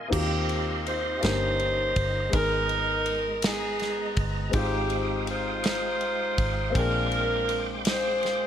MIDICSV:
0, 0, Header, 1, 6, 480
1, 0, Start_track
1, 0, Key_signature, -3, "major"
1, 0, Tempo, 735294
1, 84, Time_signature, 6, 3, 24, 8
1, 5529, End_track
2, 0, Start_track
2, 0, Title_t, "Tonewheel organ"
2, 0, Program_c, 0, 16
2, 0, Note_on_c, 0, 75, 49
2, 66, Note_off_c, 0, 75, 0
2, 81, Note_on_c, 0, 75, 64
2, 82, Note_on_c, 0, 84, 80
2, 83, Note_on_c, 0, 67, 69
2, 87, Note_on_c, 0, 77, 65
2, 796, Note_off_c, 0, 75, 0
2, 797, Note_off_c, 0, 84, 0
2, 800, Note_off_c, 0, 77, 0
2, 804, Note_on_c, 0, 75, 60
2, 809, Note_on_c, 0, 82, 60
2, 1510, Note_off_c, 0, 82, 0
2, 1511, Note_off_c, 0, 67, 0
2, 1518, Note_on_c, 0, 82, 67
2, 1520, Note_on_c, 0, 56, 71
2, 2945, Note_off_c, 0, 75, 0
2, 2949, Note_off_c, 0, 82, 0
2, 2968, Note_on_c, 0, 79, 69
2, 2971, Note_on_c, 0, 77, 64
2, 2971, Note_on_c, 0, 87, 80
2, 4393, Note_off_c, 0, 79, 0
2, 4394, Note_off_c, 0, 77, 0
2, 4394, Note_off_c, 0, 87, 0
2, 4400, Note_on_c, 0, 84, 68
2, 4405, Note_on_c, 0, 86, 80
2, 4406, Note_on_c, 0, 79, 66
2, 5529, Note_off_c, 0, 56, 0
2, 5529, Note_off_c, 0, 79, 0
2, 5529, Note_off_c, 0, 84, 0
2, 5529, Note_off_c, 0, 86, 0
2, 5529, End_track
3, 0, Start_track
3, 0, Title_t, "Saxophone section"
3, 0, Program_c, 1, 65
3, 74, Note_on_c, 1, 67, 93
3, 77, Note_on_c, 1, 58, 75
3, 82, Note_on_c, 1, 60, 72
3, 534, Note_off_c, 1, 67, 0
3, 564, Note_on_c, 1, 72, 127
3, 572, Note_on_c, 1, 63, 81
3, 776, Note_off_c, 1, 58, 0
3, 778, Note_off_c, 1, 60, 0
3, 1504, Note_off_c, 1, 63, 0
3, 1526, Note_off_c, 1, 72, 0
3, 1531, Note_on_c, 1, 70, 109
3, 1534, Note_on_c, 1, 63, 83
3, 2225, Note_off_c, 1, 63, 0
3, 2249, Note_off_c, 1, 70, 0
3, 2253, Note_on_c, 1, 68, 87
3, 2256, Note_on_c, 1, 59, 71
3, 2256, Note_on_c, 1, 63, 77
3, 2764, Note_off_c, 1, 68, 0
3, 2946, Note_off_c, 1, 59, 0
3, 2946, Note_off_c, 1, 63, 0
3, 2968, Note_on_c, 1, 63, 70
3, 2971, Note_on_c, 1, 67, 103
3, 2973, Note_on_c, 1, 60, 73
3, 3423, Note_off_c, 1, 67, 0
3, 3448, Note_off_c, 1, 63, 0
3, 3456, Note_on_c, 1, 63, 75
3, 3461, Note_on_c, 1, 65, 81
3, 3461, Note_on_c, 1, 72, 113
3, 3664, Note_off_c, 1, 60, 0
3, 4385, Note_off_c, 1, 63, 0
3, 4387, Note_off_c, 1, 65, 0
3, 4414, Note_off_c, 1, 72, 0
3, 4417, Note_on_c, 1, 62, 80
3, 4417, Note_on_c, 1, 65, 84
3, 4423, Note_on_c, 1, 70, 113
3, 5031, Note_off_c, 1, 62, 0
3, 5031, Note_off_c, 1, 65, 0
3, 5031, Note_off_c, 1, 70, 0
3, 5142, Note_on_c, 1, 68, 70
3, 5143, Note_on_c, 1, 65, 68
3, 5153, Note_on_c, 1, 72, 96
3, 5529, Note_off_c, 1, 65, 0
3, 5529, Note_off_c, 1, 68, 0
3, 5529, Note_off_c, 1, 72, 0
3, 5529, End_track
4, 0, Start_track
4, 0, Title_t, "Upright piano"
4, 0, Program_c, 2, 0
4, 0, Control_c, 2, 64, 127
4, 0, Note_on_c, 2, 77, 48
4, 0, Note_on_c, 2, 80, 58
4, 55, Note_on_c, 2, 58, 61
4, 63, Note_on_c, 2, 60, 52
4, 67, Note_on_c, 2, 63, 56
4, 70, Note_on_c, 2, 51, 53
4, 72, Note_on_c, 2, 65, 58
4, 81, Note_on_c, 2, 66, 52
4, 91, Control_c, 2, 64, 0
4, 95, Note_off_c, 2, 80, 0
4, 97, Note_off_c, 2, 77, 0
4, 124, Note_off_c, 2, 66, 0
4, 124, Note_on_c, 2, 67, 68
4, 208, Control_c, 2, 64, 127
4, 772, Note_off_c, 2, 51, 0
4, 778, Note_off_c, 2, 58, 0
4, 788, Note_on_c, 2, 58, 63
4, 791, Note_off_c, 2, 63, 0
4, 794, Note_on_c, 2, 61, 54
4, 795, Note_off_c, 2, 60, 0
4, 796, Note_on_c, 2, 43, 59
4, 797, Note_off_c, 2, 67, 0
4, 799, Note_off_c, 2, 65, 0
4, 801, Note_on_c, 2, 63, 59
4, 806, Note_on_c, 2, 67, 53
4, 808, Note_on_c, 2, 70, 68
4, 814, Control_c, 2, 64, 0
4, 925, Control_c, 2, 64, 127
4, 1495, Note_off_c, 2, 43, 0
4, 1496, Note_on_c, 2, 56, 66
4, 1506, Note_on_c, 2, 59, 62
4, 1512, Note_off_c, 2, 63, 0
4, 1517, Note_off_c, 2, 58, 0
4, 1518, Note_on_c, 2, 44, 65
4, 1521, Note_off_c, 2, 61, 0
4, 1522, Note_on_c, 2, 63, 63
4, 1527, Note_off_c, 2, 67, 0
4, 1528, Note_off_c, 2, 70, 0
4, 1534, Control_c, 2, 64, 0
4, 1534, Note_on_c, 2, 68, 59
4, 1545, Note_on_c, 2, 70, 70
4, 1641, Control_c, 2, 64, 127
4, 2217, Note_off_c, 2, 44, 0
4, 2923, Note_off_c, 2, 56, 0
4, 2931, Note_off_c, 2, 59, 0
4, 2932, Note_on_c, 2, 56, 61
4, 2939, Note_off_c, 2, 63, 0
4, 2945, Note_off_c, 2, 68, 0
4, 2945, Note_on_c, 2, 60, 56
4, 2950, Note_off_c, 2, 70, 0
4, 2957, Note_on_c, 2, 44, 63
4, 2958, Note_on_c, 2, 63, 60
4, 2969, Note_on_c, 2, 65, 56
4, 2977, Control_c, 2, 64, 0
4, 2982, Note_on_c, 2, 67, 74
4, 3102, Control_c, 2, 64, 127
4, 3656, Note_off_c, 2, 44, 0
4, 4363, Note_off_c, 2, 56, 0
4, 4370, Note_off_c, 2, 60, 0
4, 4374, Note_on_c, 2, 58, 65
4, 4376, Note_off_c, 2, 63, 0
4, 4381, Note_off_c, 2, 65, 0
4, 4385, Note_on_c, 2, 60, 58
4, 4388, Note_off_c, 2, 67, 0
4, 4400, Note_on_c, 2, 62, 61
4, 4402, Note_on_c, 2, 46, 61
4, 4412, Note_on_c, 2, 79, 57
4, 4415, Control_c, 2, 64, 0
4, 4427, Note_on_c, 2, 68, 71
4, 4522, Control_c, 2, 64, 127
4, 5098, Note_off_c, 2, 46, 0
4, 5529, Note_off_c, 2, 58, 0
4, 5529, Note_off_c, 2, 60, 0
4, 5529, Note_off_c, 2, 62, 0
4, 5529, Note_off_c, 2, 68, 0
4, 5529, Note_off_c, 2, 79, 0
4, 5529, End_track
5, 0, Start_track
5, 0, Title_t, "Fingered electric bass"
5, 0, Program_c, 3, 33
5, 80, Note_on_c, 3, 39, 87
5, 777, Note_off_c, 3, 39, 0
5, 806, Note_on_c, 3, 31, 102
5, 1260, Note_off_c, 3, 31, 0
5, 1282, Note_on_c, 3, 31, 85
5, 1505, Note_off_c, 3, 31, 0
5, 1520, Note_on_c, 3, 32, 100
5, 2698, Note_off_c, 3, 32, 0
5, 2722, Note_on_c, 3, 31, 85
5, 2945, Note_off_c, 3, 31, 0
5, 2960, Note_on_c, 3, 32, 107
5, 4137, Note_off_c, 3, 32, 0
5, 4165, Note_on_c, 3, 32, 92
5, 4387, Note_off_c, 3, 32, 0
5, 4408, Note_on_c, 3, 34, 99
5, 5529, Note_off_c, 3, 34, 0
5, 5529, End_track
6, 0, Start_track
6, 0, Title_t, "Drums"
6, 82, Note_on_c, 9, 36, 101
6, 84, Note_on_c, 9, 49, 99
6, 147, Note_off_c, 9, 36, 0
6, 149, Note_off_c, 9, 49, 0
6, 321, Note_on_c, 9, 51, 43
6, 387, Note_off_c, 9, 51, 0
6, 565, Note_on_c, 9, 51, 47
6, 630, Note_off_c, 9, 51, 0
6, 801, Note_on_c, 9, 51, 70
6, 814, Note_on_c, 9, 38, 127
6, 866, Note_off_c, 9, 51, 0
6, 879, Note_off_c, 9, 38, 0
6, 1041, Note_on_c, 9, 51, 40
6, 1107, Note_off_c, 9, 51, 0
6, 1280, Note_on_c, 9, 51, 56
6, 1282, Note_on_c, 9, 36, 92
6, 1345, Note_off_c, 9, 51, 0
6, 1348, Note_off_c, 9, 36, 0
6, 1521, Note_on_c, 9, 51, 74
6, 1523, Note_on_c, 9, 36, 120
6, 1586, Note_off_c, 9, 51, 0
6, 1588, Note_off_c, 9, 36, 0
6, 1757, Note_on_c, 9, 51, 43
6, 1823, Note_off_c, 9, 51, 0
6, 1995, Note_on_c, 9, 51, 55
6, 2061, Note_off_c, 9, 51, 0
6, 2235, Note_on_c, 9, 51, 83
6, 2248, Note_on_c, 9, 38, 125
6, 2300, Note_off_c, 9, 51, 0
6, 2313, Note_off_c, 9, 38, 0
6, 2477, Note_on_c, 9, 51, 43
6, 2493, Note_on_c, 9, 38, 37
6, 2542, Note_off_c, 9, 51, 0
6, 2558, Note_off_c, 9, 38, 0
6, 2719, Note_on_c, 9, 51, 56
6, 2723, Note_on_c, 9, 36, 93
6, 2785, Note_off_c, 9, 51, 0
6, 2788, Note_off_c, 9, 36, 0
6, 2958, Note_on_c, 9, 51, 74
6, 2962, Note_on_c, 9, 36, 105
6, 3023, Note_off_c, 9, 51, 0
6, 3027, Note_off_c, 9, 36, 0
6, 3197, Note_on_c, 9, 51, 44
6, 3263, Note_off_c, 9, 51, 0
6, 3441, Note_on_c, 9, 51, 54
6, 3506, Note_off_c, 9, 51, 0
6, 3680, Note_on_c, 9, 51, 76
6, 3693, Note_on_c, 9, 38, 127
6, 3745, Note_off_c, 9, 51, 0
6, 3758, Note_off_c, 9, 38, 0
6, 3922, Note_on_c, 9, 51, 39
6, 3987, Note_off_c, 9, 51, 0
6, 4165, Note_on_c, 9, 51, 57
6, 4167, Note_on_c, 9, 36, 91
6, 4230, Note_off_c, 9, 51, 0
6, 4232, Note_off_c, 9, 36, 0
6, 4407, Note_on_c, 9, 36, 103
6, 4409, Note_on_c, 9, 51, 70
6, 4473, Note_off_c, 9, 36, 0
6, 4474, Note_off_c, 9, 51, 0
6, 4645, Note_on_c, 9, 51, 43
6, 4710, Note_off_c, 9, 51, 0
6, 4888, Note_on_c, 9, 51, 48
6, 4953, Note_off_c, 9, 51, 0
6, 5124, Note_on_c, 9, 51, 80
6, 5137, Note_on_c, 9, 38, 116
6, 5189, Note_off_c, 9, 51, 0
6, 5202, Note_off_c, 9, 38, 0
6, 5371, Note_on_c, 9, 51, 38
6, 5387, Note_on_c, 9, 38, 35
6, 5436, Note_off_c, 9, 51, 0
6, 5452, Note_off_c, 9, 38, 0
6, 5529, End_track
0, 0, End_of_file